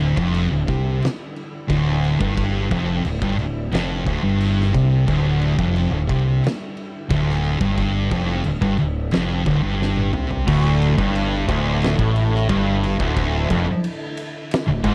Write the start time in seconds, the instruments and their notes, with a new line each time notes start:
Already playing: fingered electric bass D1, distorted electric guitar D2, string machine D3 G3 E4
0.00 crash
0.17 fingered electric bass F1, distorted electric guitar F2, kick
0.34 crash
0.51 fingered electric bass D1, distorted electric guitar D2
0.68 fingered electric bass C2, distorted electric guitar C3, kick, crash
1.02 snare, crash
1.36 crash
1.69 fingered electric bass D1, distorted electric guitar D2, kick, crash
2.04 crash
2.20 fingered electric bass G1, distorted electric guitar G2, kick
2.37 kick, crash
2.70 fingered electric bass F1, distorted electric guitar F2, kick, crash
3.04 fingered electric bass D1, distorted electric guitar D2, crash
3.22 fingered electric bass G1, distorted electric guitar G2, kick
3.38 fingered electric bass D1, distorted electric guitar D2, crash
3.71 fingered electric bass F1, distorted electric guitar F2, snare, crash
4.06 fingered electric bass D1, distorted electric guitar D2, kick, crash
4.22 fingered electric bass G1, distorted electric guitar G2
4.41 crash
4.61 snare
4.73 fingered electric bass C2, distorted electric guitar C3, kick, crash
5.06 fingered electric bass D1, distorted electric guitar D2, kick, crash
5.42 crash
5.57 fingered electric bass F1, distorted electric guitar F2, kick
5.76 crash
5.91 fingered electric bass D1, distorted electric guitar D2
6.07 fingered electric bass C2, distorted electric guitar C3, kick, crash
6.44 snare, crash
6.77 crash
7.09 fingered electric bass D1, distorted electric guitar D2, kick, crash
7.30 snare
7.44 crash
7.61 fingered electric bass G1, distorted electric guitar G2, kick
7.78 kick, crash
8.11 fingered electric bass F1, distorted electric guitar F2, kick, crash
8.44 fingered electric bass D1, distorted electric guitar D2, crash
8.62 fingered electric bass G1, distorted electric guitar G2, kick
8.78 fingered electric bass D1, distorted electric guitar D2, crash
9.11 fingered electric bass F1, distorted electric guitar F2, snare, crash
9.46 fingered electric bass D1, distorted electric guitar D2, kick, crash
9.63 fingered electric bass G1, distorted electric guitar G2
9.82 snare
9.96 high tom
10.13 fingered electric bass C2, distorted electric guitar C3, mid tom
10.31 floor tom
10.47 fingered electric bass D1, distorted electric guitar D2, string machine D3 E4 A4, kick, crash
10.82 ride
10.98 fingered electric bass G1, distorted electric guitar G2, kick
11.15 ride
11.48 fingered electric bass D1, distorted electric guitar D2, kick, ride
11.82 snare, ride
11.98 fingered electric bass A1, distorted electric guitar A2, kick
12.16 ride
12.35 snare
12.49 fingered electric bass G1, distorted electric guitar G2, kick, ride
12.84 ride
12.99 fingered electric bass D1, distorted electric guitar D2, kick
13.17 kick, ride
13.50 fingered electric bass F1, distorted electric guitar F2, kick, ride
13.84 ride
14.17 ride
14.51 snare, ride
14.67 fingered electric bass D1, distorted electric guitar D2
14.83 fingered electric bass G#1, distorted electric guitar G#2, kick, ride